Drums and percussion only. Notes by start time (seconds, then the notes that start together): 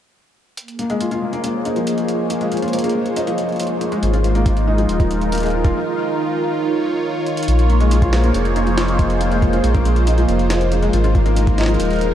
0.57 closed hi-hat
0.68 closed hi-hat
0.79 closed hi-hat
0.90 closed hi-hat
1.01 closed hi-hat
1.11 closed hi-hat
1.33 closed hi-hat
1.44 closed hi-hat
1.65 closed hi-hat
1.76 closed hi-hat
1.87 closed hi-hat
1.98 closed hi-hat
2.08 closed hi-hat
2.30 closed hi-hat
2.41 closed hi-hat
2.52 closed hi-hat
2.57 closed hi-hat
2.62 closed hi-hat
2.68 closed hi-hat
2.73 closed hi-hat
2.79 closed hi-hat
2.84 closed hi-hat
2.89 closed hi-hat
3.06 closed hi-hat
3.16 closed hi-hat
3.27 closed hi-hat
3.38 closed hi-hat
3.49 closed hi-hat
3.52 closed hi-hat
3.56 closed hi-hat
3.60 closed hi-hat
3.63 closed hi-hat
3.67 closed hi-hat
3.81 closed hi-hat
3.92 closed hi-hat
4.03 closed hi-hat
4.14 closed hi-hat
4.24 closed hi-hat
4.35 closed hi-hat
4.46 kick, closed hi-hat
4.57 closed hi-hat
4.78 closed hi-hat
4.89 closed hi-hat
5.00 kick, closed hi-hat
5.11 closed hi-hat
5.21 closed hi-hat
5.32 closed hi-hat
5.35 closed hi-hat
5.38 closed hi-hat
5.40 closed hi-hat
5.43 closed hi-hat
5.46 closed hi-hat
5.48 closed hi-hat
5.50 closed hi-hat
5.65 kick, closed hi-hat
7.26 closed hi-hat
7.37 closed hi-hat
7.43 closed hi-hat
7.48 closed hi-hat
7.59 closed hi-hat
7.70 closed hi-hat
7.80 closed hi-hat
7.91 closed hi-hat
8.02 kick, closed hi-hat
8.13 snare, closed hi-hat
8.24 closed hi-hat
8.34 closed hi-hat
8.45 closed hi-hat
8.56 closed hi-hat
8.67 closed hi-hat
8.78 snare, closed hi-hat
8.88 closed hi-hat
8.99 kick, closed hi-hat
9.10 closed hi-hat
9.21 closed hi-hat
9.32 closed hi-hat
9.42 kick, closed hi-hat
9.53 closed hi-hat
9.64 closed hi-hat
9.75 kick, closed hi-hat
9.85 closed hi-hat
9.96 closed hi-hat
10.07 closed hi-hat
10.18 closed hi-hat
10.29 closed hi-hat
10.39 closed hi-hat
10.50 snare, closed hi-hat
10.61 closed hi-hat
10.72 closed hi-hat
10.83 closed hi-hat
10.93 closed hi-hat
11.04 closed hi-hat
11.15 kick, closed hi-hat
11.26 closed hi-hat
11.36 closed hi-hat
11.47 kick, closed hi-hat
11.58 snare, closed hi-hat
11.61 snare
11.63 snare
11.66 snare, closed hi-hat
11.74 closed hi-hat
11.80 closed hi-hat
11.85 closed hi-hat
11.90 closed hi-hat
11.93 closed hi-hat
11.96 closed hi-hat
11.99 closed hi-hat
12.01 closed hi-hat